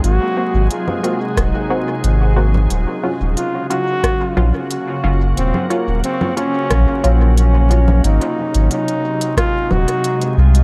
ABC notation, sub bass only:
X:1
M:4/4
L:1/16
Q:1/4=90
K:Abmix
V:1 name="Sub bass" clef=bass
A,,, z2 A,,, z4 E,,, z3 A,,,4 | E,,, z2 E,,, z6 B,,, z3 G,,,2 | E,,, z2 E,,, z4 B,,, z B,,,6 | A,,, z2 A,,, z6 E,,, z3 C,,2 |]